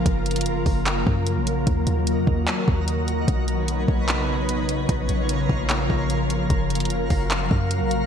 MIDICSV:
0, 0, Header, 1, 5, 480
1, 0, Start_track
1, 0, Tempo, 402685
1, 69, Time_signature, 4, 2, 24, 8
1, 9611, End_track
2, 0, Start_track
2, 0, Title_t, "Synth texture"
2, 0, Program_c, 0, 99
2, 1986, Note_on_c, 0, 75, 77
2, 1987, Note_on_c, 0, 66, 84
2, 1988, Note_on_c, 0, 82, 94
2, 3888, Note_off_c, 0, 75, 0
2, 3889, Note_off_c, 0, 66, 0
2, 3889, Note_off_c, 0, 82, 0
2, 3907, Note_on_c, 0, 63, 85
2, 3908, Note_on_c, 0, 73, 76
2, 3908, Note_on_c, 0, 83, 92
2, 5809, Note_off_c, 0, 63, 0
2, 5809, Note_off_c, 0, 83, 0
2, 5832, Note_on_c, 0, 82, 90
2, 5833, Note_on_c, 0, 65, 83
2, 7710, Note_off_c, 0, 73, 0
2, 7732, Note_off_c, 0, 65, 0
2, 7748, Note_on_c, 0, 66, 82
2, 7751, Note_on_c, 0, 77, 78
2, 9611, Note_off_c, 0, 66, 0
2, 9611, Note_off_c, 0, 77, 0
2, 9611, Note_off_c, 0, 82, 0
2, 9611, End_track
3, 0, Start_track
3, 0, Title_t, "Ambient pad"
3, 0, Program_c, 1, 92
3, 0, Note_on_c, 1, 65, 78
3, 0, Note_on_c, 1, 70, 92
3, 66, Note_on_c, 1, 54, 78
3, 66, Note_on_c, 1, 58, 78
3, 67, Note_on_c, 1, 49, 82
3, 1953, Note_off_c, 1, 65, 0
3, 1969, Note_off_c, 1, 49, 0
3, 1987, Note_on_c, 1, 66, 75
3, 1988, Note_on_c, 1, 51, 82
3, 3864, Note_off_c, 1, 70, 0
3, 3869, Note_off_c, 1, 58, 0
3, 3889, Note_off_c, 1, 51, 0
3, 3889, Note_off_c, 1, 66, 0
3, 3907, Note_on_c, 1, 49, 85
3, 3907, Note_on_c, 1, 63, 75
3, 3907, Note_on_c, 1, 71, 92
3, 3908, Note_on_c, 1, 59, 77
3, 5780, Note_off_c, 1, 54, 0
3, 5809, Note_off_c, 1, 59, 0
3, 5809, Note_off_c, 1, 63, 0
3, 5809, Note_off_c, 1, 71, 0
3, 5832, Note_on_c, 1, 53, 78
3, 5832, Note_on_c, 1, 65, 78
3, 5833, Note_on_c, 1, 58, 78
3, 5833, Note_on_c, 1, 70, 95
3, 7731, Note_off_c, 1, 53, 0
3, 7731, Note_off_c, 1, 65, 0
3, 7732, Note_off_c, 1, 58, 0
3, 7750, Note_on_c, 1, 77, 77
3, 7751, Note_on_c, 1, 54, 73
3, 7751, Note_on_c, 1, 58, 78
3, 9611, Note_off_c, 1, 49, 0
3, 9611, Note_off_c, 1, 54, 0
3, 9611, Note_off_c, 1, 58, 0
3, 9611, Note_off_c, 1, 70, 0
3, 9611, Note_off_c, 1, 77, 0
3, 9611, End_track
4, 0, Start_track
4, 0, Title_t, "808-style bass"
4, 0, Program_c, 2, 38
4, 69, Note_on_c, 2, 30, 113
4, 547, Note_on_c, 2, 29, 96
4, 565, Note_off_c, 2, 30, 0
4, 670, Note_on_c, 2, 30, 95
4, 688, Note_off_c, 2, 29, 0
4, 783, Note_off_c, 2, 30, 0
4, 788, Note_on_c, 2, 30, 107
4, 1249, Note_off_c, 2, 30, 0
4, 1271, Note_on_c, 2, 42, 103
4, 1629, Note_on_c, 2, 34, 102
4, 1647, Note_off_c, 2, 42, 0
4, 1971, Note_off_c, 2, 34, 0
4, 1988, Note_on_c, 2, 39, 112
4, 2219, Note_off_c, 2, 39, 0
4, 2227, Note_on_c, 2, 39, 106
4, 2588, Note_on_c, 2, 42, 92
4, 2606, Note_off_c, 2, 39, 0
4, 2703, Note_off_c, 2, 42, 0
4, 2708, Note_on_c, 2, 39, 107
4, 2939, Note_off_c, 2, 39, 0
4, 3193, Note_on_c, 2, 39, 101
4, 3882, Note_off_c, 2, 39, 0
4, 3909, Note_on_c, 2, 35, 114
4, 4600, Note_off_c, 2, 35, 0
4, 4628, Note_on_c, 2, 35, 102
4, 5781, Note_off_c, 2, 35, 0
4, 5829, Note_on_c, 2, 34, 114
4, 6059, Note_off_c, 2, 34, 0
4, 6069, Note_on_c, 2, 34, 99
4, 6530, Note_off_c, 2, 34, 0
4, 6549, Note_on_c, 2, 34, 104
4, 7010, Note_off_c, 2, 34, 0
4, 7033, Note_on_c, 2, 34, 98
4, 7722, Note_off_c, 2, 34, 0
4, 7749, Note_on_c, 2, 30, 105
4, 8230, Note_on_c, 2, 29, 98
4, 8248, Note_off_c, 2, 30, 0
4, 8350, Note_on_c, 2, 30, 93
4, 8368, Note_off_c, 2, 29, 0
4, 8463, Note_off_c, 2, 30, 0
4, 8469, Note_on_c, 2, 30, 105
4, 8930, Note_off_c, 2, 30, 0
4, 8952, Note_on_c, 2, 42, 104
4, 9308, Note_on_c, 2, 34, 99
4, 9326, Note_off_c, 2, 42, 0
4, 9611, Note_off_c, 2, 34, 0
4, 9611, End_track
5, 0, Start_track
5, 0, Title_t, "Drums"
5, 69, Note_on_c, 9, 36, 116
5, 70, Note_on_c, 9, 42, 73
5, 188, Note_off_c, 9, 36, 0
5, 189, Note_off_c, 9, 42, 0
5, 309, Note_on_c, 9, 42, 55
5, 370, Note_off_c, 9, 42, 0
5, 370, Note_on_c, 9, 42, 55
5, 429, Note_off_c, 9, 42, 0
5, 429, Note_on_c, 9, 42, 58
5, 488, Note_off_c, 9, 42, 0
5, 488, Note_on_c, 9, 42, 55
5, 547, Note_off_c, 9, 42, 0
5, 547, Note_on_c, 9, 42, 76
5, 666, Note_off_c, 9, 42, 0
5, 786, Note_on_c, 9, 46, 50
5, 789, Note_on_c, 9, 36, 86
5, 906, Note_off_c, 9, 46, 0
5, 908, Note_off_c, 9, 36, 0
5, 1029, Note_on_c, 9, 42, 67
5, 1032, Note_on_c, 9, 39, 102
5, 1148, Note_off_c, 9, 42, 0
5, 1151, Note_off_c, 9, 39, 0
5, 1271, Note_on_c, 9, 36, 100
5, 1391, Note_off_c, 9, 36, 0
5, 1509, Note_on_c, 9, 42, 74
5, 1628, Note_off_c, 9, 42, 0
5, 1751, Note_on_c, 9, 42, 67
5, 1870, Note_off_c, 9, 42, 0
5, 1989, Note_on_c, 9, 36, 116
5, 1989, Note_on_c, 9, 42, 70
5, 2108, Note_off_c, 9, 36, 0
5, 2108, Note_off_c, 9, 42, 0
5, 2226, Note_on_c, 9, 42, 68
5, 2345, Note_off_c, 9, 42, 0
5, 2468, Note_on_c, 9, 42, 76
5, 2587, Note_off_c, 9, 42, 0
5, 2709, Note_on_c, 9, 36, 90
5, 2828, Note_off_c, 9, 36, 0
5, 2950, Note_on_c, 9, 42, 65
5, 2952, Note_on_c, 9, 39, 101
5, 3069, Note_off_c, 9, 42, 0
5, 3071, Note_off_c, 9, 39, 0
5, 3192, Note_on_c, 9, 36, 105
5, 3311, Note_off_c, 9, 36, 0
5, 3430, Note_on_c, 9, 42, 73
5, 3549, Note_off_c, 9, 42, 0
5, 3670, Note_on_c, 9, 42, 67
5, 3790, Note_off_c, 9, 42, 0
5, 3909, Note_on_c, 9, 36, 116
5, 3911, Note_on_c, 9, 42, 72
5, 4028, Note_off_c, 9, 36, 0
5, 4030, Note_off_c, 9, 42, 0
5, 4148, Note_on_c, 9, 42, 66
5, 4267, Note_off_c, 9, 42, 0
5, 4388, Note_on_c, 9, 42, 76
5, 4507, Note_off_c, 9, 42, 0
5, 4629, Note_on_c, 9, 36, 90
5, 4748, Note_off_c, 9, 36, 0
5, 4870, Note_on_c, 9, 42, 69
5, 4872, Note_on_c, 9, 39, 106
5, 4989, Note_off_c, 9, 42, 0
5, 4991, Note_off_c, 9, 39, 0
5, 5350, Note_on_c, 9, 42, 72
5, 5469, Note_off_c, 9, 42, 0
5, 5589, Note_on_c, 9, 42, 66
5, 5708, Note_off_c, 9, 42, 0
5, 5829, Note_on_c, 9, 36, 115
5, 5829, Note_on_c, 9, 42, 68
5, 5948, Note_off_c, 9, 36, 0
5, 5948, Note_off_c, 9, 42, 0
5, 6067, Note_on_c, 9, 42, 62
5, 6186, Note_off_c, 9, 42, 0
5, 6308, Note_on_c, 9, 42, 77
5, 6427, Note_off_c, 9, 42, 0
5, 6549, Note_on_c, 9, 36, 89
5, 6668, Note_off_c, 9, 36, 0
5, 6789, Note_on_c, 9, 42, 66
5, 6792, Note_on_c, 9, 39, 105
5, 6908, Note_off_c, 9, 42, 0
5, 6911, Note_off_c, 9, 39, 0
5, 7032, Note_on_c, 9, 36, 101
5, 7151, Note_off_c, 9, 36, 0
5, 7270, Note_on_c, 9, 42, 73
5, 7389, Note_off_c, 9, 42, 0
5, 7511, Note_on_c, 9, 42, 66
5, 7630, Note_off_c, 9, 42, 0
5, 7749, Note_on_c, 9, 36, 115
5, 7749, Note_on_c, 9, 42, 70
5, 7868, Note_off_c, 9, 36, 0
5, 7869, Note_off_c, 9, 42, 0
5, 7990, Note_on_c, 9, 42, 55
5, 8050, Note_off_c, 9, 42, 0
5, 8050, Note_on_c, 9, 42, 55
5, 8109, Note_off_c, 9, 42, 0
5, 8109, Note_on_c, 9, 42, 56
5, 8169, Note_off_c, 9, 42, 0
5, 8169, Note_on_c, 9, 42, 55
5, 8227, Note_off_c, 9, 42, 0
5, 8227, Note_on_c, 9, 42, 75
5, 8346, Note_off_c, 9, 42, 0
5, 8466, Note_on_c, 9, 46, 53
5, 8469, Note_on_c, 9, 36, 91
5, 8585, Note_off_c, 9, 46, 0
5, 8588, Note_off_c, 9, 36, 0
5, 8709, Note_on_c, 9, 42, 63
5, 8712, Note_on_c, 9, 39, 103
5, 8829, Note_off_c, 9, 42, 0
5, 8831, Note_off_c, 9, 39, 0
5, 8951, Note_on_c, 9, 36, 102
5, 9071, Note_off_c, 9, 36, 0
5, 9188, Note_on_c, 9, 42, 74
5, 9307, Note_off_c, 9, 42, 0
5, 9430, Note_on_c, 9, 42, 65
5, 9550, Note_off_c, 9, 42, 0
5, 9611, End_track
0, 0, End_of_file